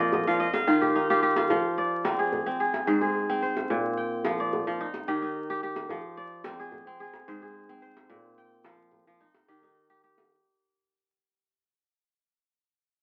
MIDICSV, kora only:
0, 0, Header, 1, 2, 480
1, 0, Start_track
1, 0, Tempo, 549954
1, 1314, Time_signature, 4, 2, 24, 8
1, 11366, End_track
2, 0, Start_track
2, 0, Title_t, "Kora"
2, 0, Program_c, 0, 46
2, 0, Note_on_c, 0, 46, 76
2, 0, Note_on_c, 0, 53, 73
2, 0, Note_on_c, 0, 60, 80
2, 0, Note_on_c, 0, 72, 66
2, 0, Note_on_c, 0, 74, 67
2, 0, Note_on_c, 0, 75, 69
2, 0, Note_on_c, 0, 77, 77
2, 114, Note_off_c, 0, 75, 0
2, 117, Note_on_c, 0, 75, 66
2, 193, Note_off_c, 0, 72, 0
2, 230, Note_off_c, 0, 53, 0
2, 235, Note_off_c, 0, 77, 0
2, 239, Note_on_c, 0, 77, 67
2, 240, Note_on_c, 0, 53, 71
2, 343, Note_off_c, 0, 75, 0
2, 347, Note_on_c, 0, 75, 67
2, 398, Note_off_c, 0, 46, 0
2, 398, Note_off_c, 0, 53, 0
2, 399, Note_off_c, 0, 74, 0
2, 466, Note_off_c, 0, 77, 0
2, 469, Note_on_c, 0, 77, 67
2, 587, Note_on_c, 0, 51, 77
2, 591, Note_on_c, 0, 65, 69
2, 612, Note_off_c, 0, 60, 0
2, 710, Note_on_c, 0, 67, 60
2, 834, Note_on_c, 0, 63, 68
2, 957, Note_off_c, 0, 65, 0
2, 958, Note_off_c, 0, 67, 0
2, 961, Note_on_c, 0, 65, 72
2, 961, Note_on_c, 0, 67, 80
2, 1067, Note_off_c, 0, 67, 0
2, 1071, Note_on_c, 0, 67, 71
2, 1190, Note_off_c, 0, 65, 0
2, 1194, Note_on_c, 0, 65, 66
2, 1281, Note_off_c, 0, 75, 0
2, 1310, Note_on_c, 0, 53, 79
2, 1341, Note_off_c, 0, 77, 0
2, 1357, Note_off_c, 0, 51, 0
2, 1552, Note_on_c, 0, 74, 71
2, 1604, Note_off_c, 0, 63, 0
2, 1786, Note_on_c, 0, 60, 74
2, 1910, Note_on_c, 0, 68, 60
2, 1963, Note_off_c, 0, 67, 0
2, 2147, Note_off_c, 0, 60, 0
2, 2150, Note_on_c, 0, 60, 71
2, 2266, Note_off_c, 0, 68, 0
2, 2270, Note_on_c, 0, 68, 66
2, 2316, Note_off_c, 0, 53, 0
2, 2507, Note_on_c, 0, 72, 65
2, 2508, Note_on_c, 0, 44, 77
2, 2515, Note_off_c, 0, 65, 0
2, 2519, Note_off_c, 0, 74, 0
2, 2626, Note_off_c, 0, 68, 0
2, 2629, Note_on_c, 0, 68, 61
2, 2873, Note_off_c, 0, 60, 0
2, 2876, Note_on_c, 0, 60, 80
2, 2985, Note_off_c, 0, 72, 0
2, 2989, Note_on_c, 0, 72, 62
2, 3231, Note_on_c, 0, 46, 80
2, 3276, Note_off_c, 0, 44, 0
2, 3469, Note_on_c, 0, 79, 66
2, 3521, Note_off_c, 0, 68, 0
2, 3714, Note_on_c, 0, 53, 76
2, 3839, Note_on_c, 0, 74, 64
2, 4025, Note_off_c, 0, 72, 0
2, 4066, Note_off_c, 0, 53, 0
2, 4077, Note_on_c, 0, 53, 71
2, 4194, Note_on_c, 0, 63, 69
2, 4235, Note_off_c, 0, 46, 0
2, 4235, Note_off_c, 0, 53, 0
2, 4247, Note_off_c, 0, 74, 0
2, 4282, Note_off_c, 0, 79, 0
2, 4433, Note_on_c, 0, 67, 67
2, 4434, Note_on_c, 0, 51, 81
2, 4447, Note_off_c, 0, 60, 0
2, 4554, Note_off_c, 0, 63, 0
2, 4558, Note_on_c, 0, 63, 66
2, 4796, Note_off_c, 0, 67, 0
2, 4799, Note_on_c, 0, 67, 81
2, 4911, Note_off_c, 0, 67, 0
2, 4915, Note_on_c, 0, 67, 71
2, 5152, Note_on_c, 0, 53, 83
2, 5195, Note_off_c, 0, 51, 0
2, 5388, Note_on_c, 0, 74, 73
2, 5440, Note_off_c, 0, 63, 0
2, 5635, Note_on_c, 0, 60, 84
2, 5756, Note_on_c, 0, 68, 65
2, 5809, Note_off_c, 0, 67, 0
2, 5993, Note_off_c, 0, 60, 0
2, 5996, Note_on_c, 0, 60, 76
2, 6107, Note_off_c, 0, 68, 0
2, 6110, Note_on_c, 0, 68, 69
2, 6155, Note_off_c, 0, 53, 0
2, 6353, Note_on_c, 0, 72, 70
2, 6354, Note_on_c, 0, 44, 81
2, 6355, Note_off_c, 0, 74, 0
2, 6473, Note_off_c, 0, 68, 0
2, 6476, Note_on_c, 0, 68, 57
2, 6711, Note_off_c, 0, 60, 0
2, 6714, Note_on_c, 0, 60, 80
2, 6822, Note_off_c, 0, 72, 0
2, 6826, Note_on_c, 0, 72, 70
2, 7066, Note_on_c, 0, 46, 76
2, 7115, Note_off_c, 0, 44, 0
2, 7313, Note_on_c, 0, 79, 72
2, 7365, Note_off_c, 0, 68, 0
2, 7553, Note_on_c, 0, 53, 78
2, 7862, Note_off_c, 0, 72, 0
2, 7909, Note_off_c, 0, 53, 0
2, 7919, Note_on_c, 0, 53, 70
2, 8034, Note_on_c, 0, 63, 72
2, 8075, Note_off_c, 0, 46, 0
2, 8075, Note_off_c, 0, 53, 0
2, 8126, Note_off_c, 0, 79, 0
2, 8277, Note_on_c, 0, 51, 73
2, 8279, Note_on_c, 0, 67, 68
2, 8285, Note_off_c, 0, 60, 0
2, 8403, Note_off_c, 0, 63, 0
2, 8406, Note_on_c, 0, 63, 60
2, 8636, Note_off_c, 0, 67, 0
2, 8639, Note_on_c, 0, 67, 80
2, 8757, Note_off_c, 0, 67, 0
2, 8760, Note_on_c, 0, 67, 63
2, 9035, Note_off_c, 0, 51, 0
2, 9822, Note_off_c, 0, 63, 0
2, 9993, Note_off_c, 0, 67, 0
2, 11366, End_track
0, 0, End_of_file